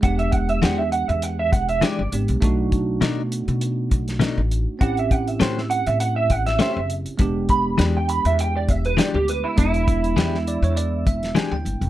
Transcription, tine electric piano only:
0.01 G#3 B3 D4 G4
2.12 G#3 B3 D4 G4
2.41 A3 D4 D#4 F#4
4.79 C4 C#4 E4
4.83 G4
7.18 G#3 B3 D4 G4
9.56 G#3 B3 D4 E4
10.48 D5
10.64 C#5
10.77 D5
11.07 E5
11.36 G#5
11.52 G5

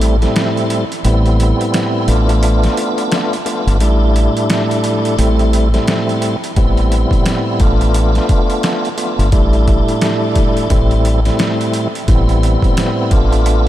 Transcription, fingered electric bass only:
Already playing: A1
1.05 A1
2.08 A1
3.67 G1
3.80 A1
5.18 A1
6.57 A1
7.60 A1
9.19 G1
9.32 A1
10.70 A1
12.08 A1
13.12 A1

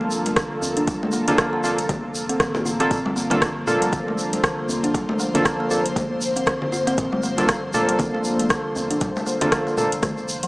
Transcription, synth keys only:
Already playing: A#3 D4 F4 A4
1.28 A#3 D4 F4 A4
1.64 A#3 D4 F4 A4
2.80 A#3 D4 F4 A4
3.31 A#3 D4 F4 A4
3.67 A#3 D4 F4 A4
5.35 A#3 D4 F4 A4
5.71 A#3 D4 F4 A4
7.38 A#3 D4 F4 A4
7.74 A#3 D4 F4 A4
9.42 A#3 D4 F4 A4
9.78 A#3 D4 F4 A4

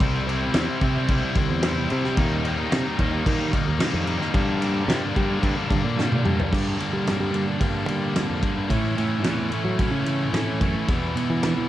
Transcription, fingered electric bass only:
0.00 C2
0.55 E2
0.82 C3
1.09 C2
1.36 C2
1.50 E2
1.92 C3
2.18 D#2
2.73 C3
2.99 D#2
3.26 D#3
3.68 D#2
3.93 F2
4.34 G2
4.88 C3
5.17 G3
5.43 G2
5.71 G2
5.85 A#2
6.25 G3
6.53 G2
6.93 G3
7.20 G3
7.60 G2
7.89 G3
8.30 F2
8.57 G2
8.70 A2
8.98 A2
9.25 E2
9.64 F#3
9.91 C#3
10.33 A2
10.61 F#2
10.88 E2
11.30 E3
11.57 E3

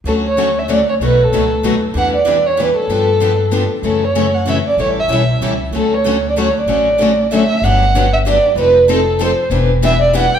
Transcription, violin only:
0.07 A4
0.26 C#5
0.59 E5
0.71 D5
0.89 C#5
1.05 B4
1.24 A4
1.98 F#5
2.15 D5
2.47 C#5
2.61 B4
2.77 A4
3.85 A4
4.04 C#5
4.34 F#5
4.49 E5
4.67 D5
4.81 C#5
4.99 E5
5.77 A4
5.94 C#5
6.29 D5
6.40 C#5
6.60 D5
7.34 E5
7.64 F#5
8.13 E5
8.28 D5
8.59 B4
8.91 A4
9.22 C5
9.85 E5
10.01 D5
10.17 F#5
10.35 G5

